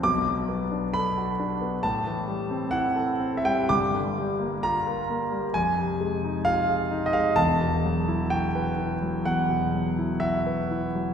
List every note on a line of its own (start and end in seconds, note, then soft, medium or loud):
0.03 1.78 B1 medium
0.03 1.79 B2 medium
0.03 0.93 D6 loud
0.27 0.63 F#3 soft
0.49 0.85 B3 soft
0.72 1.07 D4 soft
0.94 1.30 A4 medium
0.94 1.83 B5 loud
1.17 1.52 F#4 soft
1.40 1.75 D4 medium
1.61 1.83 B3 soft
1.83 3.66 A2 medium
1.83 2.72 A5 loud
2.07 2.42 E3 soft
2.28 2.63 G3 soft
2.51 2.86 C4 medium
2.71 3.10 E4 medium
2.71 3.36 F#5 loud
2.96 3.35 A4 medium
3.20 3.60 C4 medium
3.37 3.45 E5 medium
3.45 3.70 G3 medium
3.45 3.70 G5 loud
3.69 5.50 G1 medium
3.69 5.50 G2 medium
3.69 4.62 D6 loud
3.94 4.31 D3 medium
4.18 4.54 G3 medium
4.40 4.76 A#3 medium
4.63 5.00 F4 medium
4.63 5.54 A#5 loud
4.87 5.23 A#4 medium
5.10 5.46 A#3 soft
5.32 5.54 G3 medium
5.54 7.33 F2 medium
5.54 6.45 G#5 loud
5.79 6.14 C3 medium
6.00 6.36 G#3 medium
6.24 6.59 D#4 medium
6.45 6.82 F4 medium
6.45 7.06 F5 loud
6.67 7.04 G#4 medium
6.91 7.28 D#4 medium
7.06 7.13 D#5 medium
7.13 7.37 G#3 medium
7.13 7.36 F5 loud
7.36 9.22 E1 medium
7.36 9.22 E2 medium
7.36 8.31 A5 loud
7.61 7.98 B2 soft
7.85 8.22 F#3 medium
8.08 8.46 E4 medium
8.30 8.69 F#4 medium
8.30 9.26 G5 medium
8.55 8.93 B4 medium
8.78 9.16 E4 medium
9.02 9.40 F#3 soft
9.25 11.14 E2 medium
9.25 10.20 F#5 loud
9.49 9.87 B2 soft
9.74 10.11 F#3 soft
9.99 10.36 E4 soft
10.20 10.60 F#4 medium
10.20 11.14 E5 loud
10.46 10.85 B4 medium
10.71 11.11 E4 soft
10.95 11.14 F#3 soft